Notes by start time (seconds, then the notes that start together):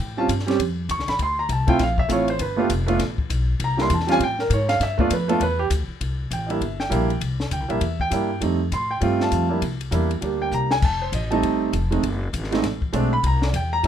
Already playing: G5
0.00 A2
0.17 G3 C4 C#4 F4 A5
0.28 G2, kick, hi-hat pedal, ride
0.39 snare
0.46 G3 C4 C#4 G4, snare, ride
0.59 F2, kick, ride
0.89 D#2 C#6, kick, hi-hat pedal, ride
0.98 C#2, snare
1.08 A1 B5, snare, ride
1.19 D2 C6, kick, ride
1.39 A#5
1.49 C2 A5, kick, hi-hat pedal, ride
1.67 A3 C4 E4 F4 G5, kick, ride
1.79 A#1 F5, kick, snare, ride
1.98 E5, kick
2.08 A1 A3 C4 E4 F4 C#5, kick, hi-hat pedal, ride
2.28 C5, ride
2.39 G1 B4, kick, ride
2.56 A3 B3 D4 F4 G4
2.69 F1, kick, hi-hat pedal, ride
2.87 A3 B3 D4 F4, ride
2.99 A1, kick, snare, ride
3.18 kick
3.30 B1, kick, hi-hat pedal, ride
3.59 C2, kick, ride
3.64 A#5
3.77 G3 A#3 D4 E4, snare
3.81 C6
3.90 E2, kick, hi-hat pedal, ride
3.94 A5
4.00 snare
4.07 G3 C4 C#4 F4, snare, ride
4.12 G#5
4.20 A2 G5, kick, ride
4.39 A#4, snare
4.50 G#2 C#5, kick, hi-hat pedal, ride
4.69 F5, snare, ride
4.80 G2 E5, kick, snare, ride
4.98 A3 B3 D4 F4 D5, kick
5.10 F2 B4, kick, hi-hat pedal, ride
5.28 A3 B3 D4 F4 A4, ride
5.40 E2 B4, kick, ride
5.59 G4
5.70 D2, kick, hi-hat pedal, ride
5.88 muted upright bass stroke
6.01 C2, kick, ride
6.31 A1 G5, kick, hi-hat pedal, ride
6.47 G3 A#3 D4 E4 D#5, ride
6.51 E5
6.61 G1, kick, ride
6.80 G5, snare
6.89 A#1 G3 A#3 D4 E4, kick, hi-hat pedal, ride
7.10 ride
7.21 C2, kick, ride
7.40 snare
7.51 D2 G5, kick, hi-hat pedal, ride
7.60 C2
7.68 A#1 G3 A#3 D4 E4 E5, ride
7.81 E2, kick, ride
8.00 G5, kick
8.10 G2 G3 A#3 D4 E4, kick, hi-hat pedal, ride
8.40 F2 G3 A3 C4 D#4, kick, ride
8.72 A2 C6, kick, hi-hat pedal, ride
8.91 G5
9.01 G2 G3 A3 C4 F4, kick, ride
9.20 A5, snare
9.32 F2, kick, hi-hat pedal, ride
9.49 G3 A#3 D4 E4
9.62 C2, kick, ride
9.81 ride
9.91 E2 G3 A#3 D4 E4, kick, hi-hat pedal, ride
10.11 ride
10.21 D2 G3 A#3 D4 G4, kick, ride
10.42 G5
10.51 C2 A#5, hi-hat pedal
10.71 G#5, snare
10.82 F1 A5, kick, crash
11.02 C5
11.12 A1 D#5, kick, hi-hat pedal, ride
11.30 G3 A3 C4 D#4 A5, ride
11.43 G1, kick, ride
11.73 F1, kick, hi-hat pedal, ride
11.91 G#3 A3 C4 D#4, ride
12.03 F#1, kick, ride
12.33 G#1, kick, hi-hat pedal, ride
12.44 snare
12.51 G#3 A3 C4 D#4, snare, ride
12.63 A1, kick, snare, ride
12.82 kick
12.93 B1 G#3 A3 C4 D4, kick, hi-hat pedal, ride
13.13 B5
13.23 C2 A#5, kick, ride
13.42 D5, snare
13.53 E2 G5, kick, hi-hat pedal, ride
13.73 A#5
13.83 G2 G3 A#3, kick, ride